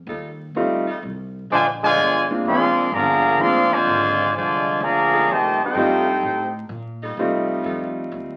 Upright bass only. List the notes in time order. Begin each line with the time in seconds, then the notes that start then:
0.07 D#2
0.55 D2
0.87 muted upright bass stroke
1.03 C2
1.50 A#1
1.97 G1
2.45 F1
2.92 G1
3.39 F1
3.71 muted upright bass stroke
3.86 G#1
4.33 C2
4.80 D2
5.27 F2
5.59 muted upright bass stroke
5.74 G2
6.23 A2
6.69 A#2
7.17 C3
7.64 F2
8.12 D#2